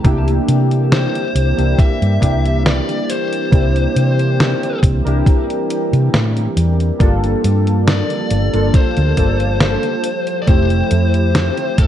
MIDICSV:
0, 0, Header, 1, 6, 480
1, 0, Start_track
1, 0, Tempo, 869565
1, 26, Time_signature, 4, 2, 24, 8
1, 6553, End_track
2, 0, Start_track
2, 0, Title_t, "Lead electric guitar"
2, 0, Program_c, 0, 29
2, 509, Note_on_c, 0, 72, 100
2, 990, Note_on_c, 0, 76, 111
2, 1002, Note_off_c, 0, 72, 0
2, 1446, Note_off_c, 0, 76, 0
2, 1470, Note_on_c, 0, 74, 95
2, 1710, Note_on_c, 0, 72, 92
2, 1715, Note_off_c, 0, 74, 0
2, 2646, Note_off_c, 0, 72, 0
2, 4349, Note_on_c, 0, 74, 109
2, 4830, Note_off_c, 0, 74, 0
2, 4833, Note_on_c, 0, 72, 100
2, 5749, Note_off_c, 0, 72, 0
2, 5751, Note_on_c, 0, 74, 85
2, 5784, Note_off_c, 0, 74, 0
2, 5786, Note_on_c, 0, 72, 106
2, 6504, Note_on_c, 0, 69, 85
2, 6527, Note_off_c, 0, 72, 0
2, 6553, Note_off_c, 0, 69, 0
2, 6553, End_track
3, 0, Start_track
3, 0, Title_t, "Synth keys"
3, 0, Program_c, 1, 88
3, 0, Control_c, 1, 64, 127
3, 19, Note_on_c, 1, 58, 89
3, 23, Note_on_c, 1, 62, 84
3, 30, Note_on_c, 1, 64, 82
3, 34, Control_c, 1, 64, 0
3, 35, Note_on_c, 1, 67, 98
3, 122, Control_c, 1, 64, 127
3, 838, Note_off_c, 1, 58, 0
3, 840, Note_off_c, 1, 62, 0
3, 844, Note_off_c, 1, 64, 0
3, 846, Note_off_c, 1, 67, 0
3, 866, Note_on_c, 1, 58, 77
3, 869, Note_on_c, 1, 62, 69
3, 872, Note_on_c, 1, 64, 68
3, 875, Note_on_c, 1, 67, 83
3, 1195, Note_off_c, 1, 58, 0
3, 1197, Note_off_c, 1, 62, 0
3, 1199, Note_off_c, 1, 64, 0
3, 1200, Note_off_c, 1, 67, 0
3, 1216, Note_on_c, 1, 58, 75
3, 1219, Note_on_c, 1, 62, 69
3, 1226, Note_on_c, 1, 64, 71
3, 1232, Note_on_c, 1, 67, 83
3, 1913, Note_off_c, 1, 58, 0
3, 1915, Note_off_c, 1, 62, 0
3, 1919, Note_off_c, 1, 64, 0
3, 1922, Note_off_c, 1, 67, 0
3, 1938, Note_on_c, 1, 58, 78
3, 1943, Note_on_c, 1, 62, 72
3, 1949, Note_on_c, 1, 64, 70
3, 1954, Note_on_c, 1, 67, 87
3, 2758, Note_off_c, 1, 58, 0
3, 2761, Note_off_c, 1, 62, 0
3, 2763, Note_off_c, 1, 64, 0
3, 2766, Note_off_c, 1, 67, 0
3, 2787, Note_on_c, 1, 70, 80
3, 2792, Note_on_c, 1, 62, 75
3, 2797, Note_on_c, 1, 64, 72
3, 2804, Note_on_c, 1, 67, 93
3, 3836, Note_off_c, 1, 70, 0
3, 3838, Note_off_c, 1, 62, 0
3, 3841, Note_off_c, 1, 64, 0
3, 3844, Note_off_c, 1, 67, 0
3, 3859, Note_on_c, 1, 58, 88
3, 3864, Note_on_c, 1, 62, 84
3, 3870, Note_on_c, 1, 65, 82
3, 3872, Control_c, 1, 64, 0
3, 3876, Note_on_c, 1, 69, 98
3, 3959, Control_c, 1, 64, 127
3, 4678, Note_off_c, 1, 58, 0
3, 4681, Note_off_c, 1, 62, 0
3, 4684, Note_off_c, 1, 65, 0
3, 4687, Note_off_c, 1, 69, 0
3, 4709, Note_on_c, 1, 58, 76
3, 4713, Note_on_c, 1, 62, 70
3, 4716, Note_on_c, 1, 65, 70
3, 4719, Note_on_c, 1, 69, 84
3, 5037, Note_off_c, 1, 58, 0
3, 5039, Note_off_c, 1, 62, 0
3, 5040, Note_off_c, 1, 65, 0
3, 5042, Note_off_c, 1, 69, 0
3, 5063, Note_on_c, 1, 58, 77
3, 5066, Note_on_c, 1, 62, 67
3, 5068, Note_on_c, 1, 65, 69
3, 5072, Note_on_c, 1, 69, 89
3, 5531, Note_off_c, 1, 58, 0
3, 5532, Note_off_c, 1, 62, 0
3, 5533, Note_off_c, 1, 65, 0
3, 5535, Note_off_c, 1, 69, 0
3, 5553, Control_c, 1, 64, 0
3, 5637, Control_c, 1, 64, 127
3, 5775, Note_on_c, 1, 57, 81
3, 5782, Note_on_c, 1, 60, 72
3, 5787, Note_on_c, 1, 64, 73
3, 5792, Note_on_c, 1, 67, 86
3, 6553, Note_off_c, 1, 57, 0
3, 6553, Note_off_c, 1, 60, 0
3, 6553, Note_off_c, 1, 64, 0
3, 6553, Note_off_c, 1, 67, 0
3, 6553, End_track
4, 0, Start_track
4, 0, Title_t, "Ambient pad"
4, 0, Program_c, 2, 92
4, 0, Note_on_c, 2, 67, 87
4, 20, Note_on_c, 2, 55, 73
4, 22, Note_on_c, 2, 60, 74
4, 23, Note_on_c, 2, 52, 79
4, 3842, Note_off_c, 2, 52, 0
4, 3842, Note_off_c, 2, 60, 0
4, 3866, Note_on_c, 2, 69, 72
4, 3867, Note_on_c, 2, 53, 81
4, 5521, Note_off_c, 2, 55, 0
4, 5526, Note_off_c, 2, 67, 0
4, 5529, Note_off_c, 2, 69, 0
4, 5542, Note_on_c, 2, 57, 72
4, 5543, Note_on_c, 2, 64, 72
4, 5544, Note_on_c, 2, 67, 86
4, 6495, Note_off_c, 2, 64, 0
4, 6553, Note_off_c, 2, 53, 0
4, 6553, Note_off_c, 2, 57, 0
4, 6553, Note_off_c, 2, 67, 0
4, 6553, End_track
5, 0, Start_track
5, 0, Title_t, "Fingered electric bass"
5, 0, Program_c, 3, 33
5, 25, Note_on_c, 3, 36, 100
5, 209, Note_off_c, 3, 36, 0
5, 267, Note_on_c, 3, 48, 89
5, 582, Note_off_c, 3, 48, 0
5, 746, Note_on_c, 3, 36, 93
5, 841, Note_off_c, 3, 36, 0
5, 873, Note_on_c, 3, 36, 76
5, 958, Note_off_c, 3, 36, 0
5, 1114, Note_on_c, 3, 43, 82
5, 1198, Note_off_c, 3, 43, 0
5, 1225, Note_on_c, 3, 36, 81
5, 1542, Note_off_c, 3, 36, 0
5, 1945, Note_on_c, 3, 36, 100
5, 2129, Note_off_c, 3, 36, 0
5, 2187, Note_on_c, 3, 48, 90
5, 2502, Note_off_c, 3, 48, 0
5, 2665, Note_on_c, 3, 36, 94
5, 2760, Note_off_c, 3, 36, 0
5, 2792, Note_on_c, 3, 36, 78
5, 2877, Note_off_c, 3, 36, 0
5, 3273, Note_on_c, 3, 48, 87
5, 3358, Note_off_c, 3, 48, 0
5, 3387, Note_on_c, 3, 45, 79
5, 3570, Note_off_c, 3, 45, 0
5, 3625, Note_on_c, 3, 40, 95
5, 3809, Note_off_c, 3, 40, 0
5, 3864, Note_on_c, 3, 31, 101
5, 4048, Note_off_c, 3, 31, 0
5, 4108, Note_on_c, 3, 43, 92
5, 4423, Note_off_c, 3, 43, 0
5, 4587, Note_on_c, 3, 31, 89
5, 4681, Note_off_c, 3, 31, 0
5, 4713, Note_on_c, 3, 31, 81
5, 4798, Note_off_c, 3, 31, 0
5, 4954, Note_on_c, 3, 38, 84
5, 5038, Note_off_c, 3, 38, 0
5, 5064, Note_on_c, 3, 31, 87
5, 5381, Note_off_c, 3, 31, 0
5, 5784, Note_on_c, 3, 29, 102
5, 5968, Note_off_c, 3, 29, 0
5, 6025, Note_on_c, 3, 41, 92
5, 6341, Note_off_c, 3, 41, 0
5, 6502, Note_on_c, 3, 29, 94
5, 6553, Note_off_c, 3, 29, 0
5, 6553, End_track
6, 0, Start_track
6, 0, Title_t, "Drums"
6, 25, Note_on_c, 9, 36, 123
6, 26, Note_on_c, 9, 42, 64
6, 80, Note_off_c, 9, 36, 0
6, 81, Note_off_c, 9, 42, 0
6, 153, Note_on_c, 9, 42, 39
6, 208, Note_off_c, 9, 42, 0
6, 267, Note_on_c, 9, 42, 92
6, 323, Note_off_c, 9, 42, 0
6, 394, Note_on_c, 9, 42, 40
6, 449, Note_off_c, 9, 42, 0
6, 508, Note_on_c, 9, 38, 125
6, 508, Note_on_c, 9, 42, 72
6, 564, Note_off_c, 9, 38, 0
6, 564, Note_off_c, 9, 42, 0
6, 637, Note_on_c, 9, 42, 43
6, 692, Note_off_c, 9, 42, 0
6, 749, Note_on_c, 9, 42, 100
6, 804, Note_off_c, 9, 42, 0
6, 875, Note_on_c, 9, 42, 40
6, 930, Note_off_c, 9, 42, 0
6, 985, Note_on_c, 9, 36, 122
6, 989, Note_on_c, 9, 42, 72
6, 1041, Note_off_c, 9, 36, 0
6, 1044, Note_off_c, 9, 42, 0
6, 1116, Note_on_c, 9, 42, 41
6, 1172, Note_off_c, 9, 42, 0
6, 1226, Note_on_c, 9, 36, 66
6, 1229, Note_on_c, 9, 42, 96
6, 1281, Note_off_c, 9, 36, 0
6, 1284, Note_off_c, 9, 42, 0
6, 1355, Note_on_c, 9, 42, 41
6, 1411, Note_off_c, 9, 42, 0
6, 1468, Note_on_c, 9, 38, 127
6, 1468, Note_on_c, 9, 42, 64
6, 1523, Note_off_c, 9, 38, 0
6, 1523, Note_off_c, 9, 42, 0
6, 1595, Note_on_c, 9, 42, 40
6, 1650, Note_off_c, 9, 42, 0
6, 1709, Note_on_c, 9, 42, 99
6, 1764, Note_off_c, 9, 42, 0
6, 1836, Note_on_c, 9, 42, 43
6, 1892, Note_off_c, 9, 42, 0
6, 1946, Note_on_c, 9, 36, 122
6, 1948, Note_on_c, 9, 42, 65
6, 2001, Note_off_c, 9, 36, 0
6, 2003, Note_off_c, 9, 42, 0
6, 2076, Note_on_c, 9, 42, 38
6, 2131, Note_off_c, 9, 42, 0
6, 2189, Note_on_c, 9, 42, 91
6, 2244, Note_off_c, 9, 42, 0
6, 2315, Note_on_c, 9, 42, 40
6, 2370, Note_off_c, 9, 42, 0
6, 2430, Note_on_c, 9, 38, 126
6, 2430, Note_on_c, 9, 42, 65
6, 2485, Note_off_c, 9, 38, 0
6, 2485, Note_off_c, 9, 42, 0
6, 2558, Note_on_c, 9, 42, 42
6, 2613, Note_off_c, 9, 42, 0
6, 2665, Note_on_c, 9, 36, 106
6, 2669, Note_on_c, 9, 42, 90
6, 2720, Note_off_c, 9, 36, 0
6, 2725, Note_off_c, 9, 42, 0
6, 2797, Note_on_c, 9, 42, 40
6, 2852, Note_off_c, 9, 42, 0
6, 2906, Note_on_c, 9, 36, 121
6, 2910, Note_on_c, 9, 42, 68
6, 2961, Note_off_c, 9, 36, 0
6, 2965, Note_off_c, 9, 42, 0
6, 3036, Note_on_c, 9, 42, 39
6, 3092, Note_off_c, 9, 42, 0
6, 3148, Note_on_c, 9, 42, 92
6, 3203, Note_off_c, 9, 42, 0
6, 3275, Note_on_c, 9, 42, 41
6, 3330, Note_off_c, 9, 42, 0
6, 3388, Note_on_c, 9, 38, 121
6, 3388, Note_on_c, 9, 42, 64
6, 3444, Note_off_c, 9, 38, 0
6, 3444, Note_off_c, 9, 42, 0
6, 3514, Note_on_c, 9, 42, 40
6, 3570, Note_off_c, 9, 42, 0
6, 3627, Note_on_c, 9, 42, 94
6, 3682, Note_off_c, 9, 42, 0
6, 3755, Note_on_c, 9, 42, 40
6, 3810, Note_off_c, 9, 42, 0
6, 3865, Note_on_c, 9, 36, 119
6, 3868, Note_on_c, 9, 42, 61
6, 3920, Note_off_c, 9, 36, 0
6, 3924, Note_off_c, 9, 42, 0
6, 3995, Note_on_c, 9, 42, 37
6, 4050, Note_off_c, 9, 42, 0
6, 4109, Note_on_c, 9, 42, 89
6, 4164, Note_off_c, 9, 42, 0
6, 4234, Note_on_c, 9, 42, 39
6, 4290, Note_off_c, 9, 42, 0
6, 4348, Note_on_c, 9, 38, 121
6, 4348, Note_on_c, 9, 42, 64
6, 4403, Note_off_c, 9, 38, 0
6, 4403, Note_off_c, 9, 42, 0
6, 4472, Note_on_c, 9, 42, 41
6, 4528, Note_off_c, 9, 42, 0
6, 4585, Note_on_c, 9, 42, 87
6, 4640, Note_off_c, 9, 42, 0
6, 4712, Note_on_c, 9, 42, 37
6, 4768, Note_off_c, 9, 42, 0
6, 4824, Note_on_c, 9, 36, 121
6, 4825, Note_on_c, 9, 42, 67
6, 4879, Note_off_c, 9, 36, 0
6, 4880, Note_off_c, 9, 42, 0
6, 4950, Note_on_c, 9, 42, 39
6, 5005, Note_off_c, 9, 42, 0
6, 5063, Note_on_c, 9, 42, 88
6, 5064, Note_on_c, 9, 36, 62
6, 5118, Note_off_c, 9, 42, 0
6, 5119, Note_off_c, 9, 36, 0
6, 5189, Note_on_c, 9, 42, 39
6, 5244, Note_off_c, 9, 42, 0
6, 5302, Note_on_c, 9, 38, 120
6, 5302, Note_on_c, 9, 42, 62
6, 5357, Note_off_c, 9, 38, 0
6, 5357, Note_off_c, 9, 42, 0
6, 5426, Note_on_c, 9, 42, 36
6, 5482, Note_off_c, 9, 42, 0
6, 5540, Note_on_c, 9, 42, 89
6, 5596, Note_off_c, 9, 42, 0
6, 5668, Note_on_c, 9, 42, 40
6, 5724, Note_off_c, 9, 42, 0
6, 5782, Note_on_c, 9, 42, 62
6, 5784, Note_on_c, 9, 36, 116
6, 5837, Note_off_c, 9, 42, 0
6, 5839, Note_off_c, 9, 36, 0
6, 5908, Note_on_c, 9, 42, 38
6, 5963, Note_off_c, 9, 42, 0
6, 6022, Note_on_c, 9, 42, 87
6, 6077, Note_off_c, 9, 42, 0
6, 6150, Note_on_c, 9, 42, 40
6, 6205, Note_off_c, 9, 42, 0
6, 6265, Note_on_c, 9, 38, 112
6, 6265, Note_on_c, 9, 42, 63
6, 6320, Note_off_c, 9, 38, 0
6, 6320, Note_off_c, 9, 42, 0
6, 6389, Note_on_c, 9, 42, 39
6, 6444, Note_off_c, 9, 42, 0
6, 6503, Note_on_c, 9, 42, 90
6, 6504, Note_on_c, 9, 36, 99
6, 6553, Note_off_c, 9, 36, 0
6, 6553, Note_off_c, 9, 42, 0
6, 6553, End_track
0, 0, End_of_file